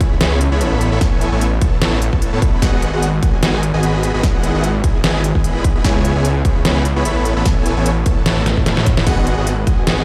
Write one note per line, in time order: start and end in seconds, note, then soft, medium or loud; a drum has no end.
0.01 0.19 C#2 loud
0.01 0.15 B3 medium
0.01 0.15 E4 medium
0.01 0.15 G#4 medium
0.01 0.15 C#5 medium
0.01 0.15 B5 medium
0.01 kick loud
0.01 closed hi-hat medium
0.21 0.50 C#2 loud
0.21 0.39 B3 medium
0.21 0.39 E4 medium
0.21 0.39 G#4 medium
0.21 0.39 C#5 medium
0.21 0.39 B5 medium
0.21 snare loud
0.21 closed hi-hat medium
0.41 closed hi-hat medium
0.52 0.62 C#2 loud
0.52 0.59 B3 medium
0.52 0.59 E4 medium
0.52 0.59 G#4 medium
0.52 0.59 C#5 medium
0.52 0.59 B5 loud
0.61 0.90 A1 medium
0.61 0.89 B3 medium
0.61 0.90 E4 medium
0.61 0.89 A4 medium
0.61 0.89 C#5 medium
0.61 0.89 B5 medium
0.61 closed hi-hat medium
0.81 closed hi-hat medium
0.92 0.99 A1 medium
0.92 0.99 B3 loud
0.92 0.99 E4 medium
0.92 0.99 A4 medium
0.92 0.99 C#5 medium
0.92 0.99 B5 loud
1.01 1.30 A1 loud
1.01 1.30 B3 medium
1.01 1.30 E4 medium
1.01 1.30 A4 medium
1.01 1.30 G#5 loud
1.01 kick loud
1.01 snare medium
1.01 closed hi-hat medium
1.21 closed hi-hat medium
1.32 1.60 A1 loud
1.32 1.45 B3 medium
1.32 1.45 E4 medium
1.32 1.45 A4 medium
1.32 1.45 C#5 medium
1.32 1.45 G#5 medium
1.41 closed hi-hat medium
1.61 1.80 A1 loud
1.61 1.76 B3 medium
1.61 1.76 E4 medium
1.61 1.76 A4 medium
1.61 1.76 C#5 medium
1.61 1.76 A5 loud
1.61 kick loud
1.61 closed hi-hat medium
1.82 2.11 A1 medium
1.82 2.00 B3 medium
1.82 2.00 E4 medium
1.82 2.00 A4 medium
1.82 2.00 C#5 medium
1.82 2.00 A5 medium
1.82 snare loud
1.82 closed hi-hat medium
2.02 closed hi-hat medium
2.13 2.31 A1 loud
2.13 2.30 B3 medium
2.13 2.30 E4 medium
2.13 2.30 A4 medium
2.13 2.30 C#5 medium
2.13 2.30 A5 medium
2.13 kick medium
2.22 closed hi-hat medium
2.33 2.40 A2 loud
2.33 2.40 B3 medium
2.33 2.40 E4 medium
2.33 2.40 A4 medium
2.33 2.40 C#5 medium
2.33 2.40 A5 loud
2.42 2.60 A1 loud
2.42 2.60 B3 medium
2.42 kick loud
2.42 closed hi-hat medium
2.62 2.91 G#1 loud
2.62 2.91 B3 medium
2.62 2.91 F#4 medium
2.62 2.91 G#4 medium
2.62 2.91 D#5 medium
2.62 2.91 F#5 loud
2.62 kick loud
2.62 snare medium
2.62 closed hi-hat medium
2.82 closed hi-hat medium
2.93 3.21 G#1 medium
2.93 3.06 B3 medium
2.93 3.06 F#4 medium
2.93 3.06 G#4 medium
2.93 3.06 D#5 medium
2.93 3.06 F#5 medium
3.03 closed hi-hat medium
3.23 3.41 G#1 medium
3.23 3.37 B3 medium
3.23 3.37 F#4 medium
3.23 3.37 G#4 medium
3.23 3.37 D#5 medium
3.23 3.37 G#5 medium
3.23 kick loud
3.23 closed hi-hat medium
3.43 3.72 G#1 loud
3.43 3.61 B3 medium
3.43 3.61 F#4 medium
3.43 3.61 G#4 medium
3.43 3.61 D#5 medium
3.43 3.61 G#5 medium
3.43 snare loud
3.43 closed hi-hat medium
3.63 closed hi-hat medium
3.74 3.81 G#1 medium
3.74 3.81 B3 medium
3.74 3.81 F#4 medium
3.74 3.81 G#4 medium
3.74 3.81 D#5 medium
3.74 3.81 G#5 loud
3.83 4.12 G#1 loud
3.83 4.12 B3 medium
3.83 4.12 F#4 medium
3.83 4.12 G#4 medium
3.83 4.12 D#5 medium
3.83 4.12 B5 medium
3.83 closed hi-hat medium
4.03 closed hi-hat medium
4.14 4.22 G#1 loud
4.14 4.21 B3 loud
4.14 4.21 F#4 medium
4.14 4.21 G#4 medium
4.14 4.21 D#5 medium
4.14 4.21 B5 loud
4.23 4.52 G#1 loud
4.23 4.52 B3 medium
4.23 4.52 G#4 medium
4.23 4.52 F#5 loud
4.23 kick loud
4.23 snare medium
4.23 closed hi-hat medium
4.44 closed hi-hat medium
4.54 4.82 G#1 loud
4.54 4.67 B3 medium
4.54 4.67 E4 medium
4.54 4.67 G#4 medium
4.54 4.67 D#5 medium
4.54 4.67 F#5 medium
4.64 closed hi-hat medium
4.84 5.02 G#1 loud
4.84 4.98 B3 medium
4.84 4.98 E4 medium
4.84 4.98 G#4 medium
4.84 4.98 D#5 medium
4.84 4.98 G#5 medium
4.84 kick loud
4.84 closed hi-hat medium
5.04 5.33 G#1 loud
5.04 5.22 B3 medium
5.04 5.22 E4 medium
5.04 5.22 G#4 medium
5.04 5.22 D#5 medium
5.04 5.22 G#5 medium
5.04 snare loud
5.04 closed hi-hat medium
5.24 closed hi-hat medium
5.35 5.42 G#1 medium
5.35 5.42 B3 medium
5.35 5.42 E4 medium
5.35 5.42 G#4 medium
5.35 5.42 D#5 medium
5.35 5.42 G#5 loud
5.35 kick medium
5.44 5.73 G#1 loud
5.44 5.73 B3 medium
5.44 5.73 E4 medium
5.44 5.73 G#4 medium
5.44 5.73 D#5 medium
5.44 5.73 B5 medium
5.44 closed hi-hat medium
5.64 kick loud
5.64 closed hi-hat medium
5.75 5.83 G#1 loud
5.75 5.82 B3 loud
5.75 5.82 E4 medium
5.75 5.82 G#4 medium
5.75 5.82 D#5 medium
5.75 5.82 B5 loud
5.84 6.13 C#2 loud
5.84 6.13 B3 medium
5.84 6.13 E4 medium
5.84 6.13 G#4 medium
5.84 6.13 C#5 medium
5.84 6.13 G#5 loud
5.84 kick loud
5.84 snare medium
5.84 closed hi-hat medium
6.05 closed hi-hat medium
6.15 6.43 C#2 medium
6.15 6.29 B3 medium
6.15 6.29 E4 medium
6.15 6.29 G#4 medium
6.15 6.29 C#5 medium
6.15 6.29 G#5 medium
6.25 closed hi-hat medium
6.45 6.63 C#2 loud
6.45 6.59 B3 medium
6.45 6.59 E4 medium
6.45 6.59 G#4 medium
6.45 6.59 C#5 medium
6.45 6.59 B5 medium
6.45 kick loud
6.45 closed hi-hat medium
6.65 6.94 C#2 medium
6.65 6.83 B3 medium
6.65 6.83 E4 medium
6.65 6.83 G#4 medium
6.65 6.83 C#5 medium
6.65 6.83 B5 medium
6.65 snare loud
6.65 closed hi-hat medium
6.85 closed hi-hat medium
6.96 7.03 C#2 loud
6.96 7.03 B3 medium
6.96 7.03 E4 medium
6.96 7.03 G#4 medium
6.96 7.03 C#5 medium
6.96 7.03 B5 loud
7.05 7.34 A1 loud
7.05 7.34 B3 medium
7.05 7.34 E4 medium
7.05 7.34 A4 medium
7.05 7.34 C#5 medium
7.05 7.34 B5 medium
7.05 closed hi-hat medium
7.25 closed hi-hat medium
7.36 7.44 A1 loud
7.36 7.43 B3 loud
7.36 7.43 E4 medium
7.36 7.43 A4 medium
7.36 7.43 C#5 medium
7.36 7.43 B5 loud
7.46 7.75 A1 loud
7.46 7.74 B3 medium
7.46 7.74 E4 medium
7.46 7.74 A4 medium
7.46 7.74 C#5 medium
7.46 7.74 G#5 loud
7.46 kick loud
7.46 snare medium
7.46 closed hi-hat medium
7.66 closed hi-hat medium
7.77 8.04 A1 loud
7.77 7.90 B3 medium
7.77 7.90 E4 medium
7.77 7.90 A4 medium
7.77 7.90 C#5 medium
7.77 7.90 G#5 medium
7.86 closed hi-hat medium
8.06 8.24 A1 loud
8.06 8.20 B3 medium
8.06 8.20 E4 medium
8.06 8.20 A4 medium
8.06 8.20 C#5 medium
8.06 8.20 A5 medium
8.06 kick loud
8.06 closed hi-hat medium
8.26 8.55 A1 loud
8.26 8.44 B3 medium
8.26 8.44 E4 medium
8.26 8.44 A4 medium
8.26 8.44 C#5 medium
8.26 8.44 A5 medium
8.26 snare loud
8.26 closed hi-hat medium
8.46 snare medium
8.46 closed hi-hat medium
8.57 8.65 A1 loud
8.57 8.64 B3 medium
8.57 8.64 E4 medium
8.57 8.64 A4 medium
8.57 8.64 C#5 medium
8.57 8.64 A5 loud
8.57 kick medium
8.66 8.95 A2 loud
8.66 8.95 B3 medium
8.66 8.95 E4 medium
8.66 8.95 A4 medium
8.66 8.95 C#5 medium
8.66 8.95 B5 medium
8.66 snare medium
8.66 closed hi-hat medium
8.77 snare medium
8.86 kick loud
8.86 closed hi-hat medium
8.97 9.05 A2 loud
8.97 9.04 B3 loud
8.97 9.04 E4 medium
8.97 9.04 A4 medium
8.97 9.04 C#5 medium
8.97 9.04 B5 loud
8.97 snare medium
9.06 9.36 G#1 loud
9.06 9.35 B3 medium
9.06 9.35 F#4 medium
9.06 9.35 G#4 medium
9.06 9.35 D#5 medium
9.06 9.35 F#5 loud
9.06 kick loud
9.06 snare medium
9.06 closed hi-hat medium
9.06 crash medium
9.27 closed hi-hat medium
9.38 9.65 G#1 loud
9.38 9.51 B3 medium
9.38 9.51 F#4 medium
9.38 9.51 G#4 medium
9.38 9.51 D#5 medium
9.38 9.51 F#5 medium
9.47 closed hi-hat medium
9.67 9.85 G#1 medium
9.67 9.81 B3 medium
9.67 9.81 F#4 medium
9.67 9.81 G#4 medium
9.67 9.81 D#5 medium
9.67 9.81 G#5 medium
9.67 kick loud
9.67 closed hi-hat medium
9.87 10.04 G#1 loud
9.87 10.04 B3 medium
9.87 10.04 F#4 medium
9.87 10.04 G#4 medium
9.87 10.04 D#5 medium
9.87 10.04 G#5 medium
9.87 snare loud
9.87 closed hi-hat medium